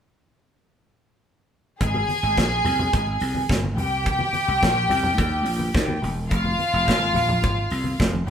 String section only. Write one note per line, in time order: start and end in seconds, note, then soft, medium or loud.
1.81 3.47 G#4 medium
1.81 3.47 G#5 loud
3.77 5.99 G4 medium
3.77 5.99 G5 medium
6.29 7.96 F4 medium
6.29 7.96 F5 loud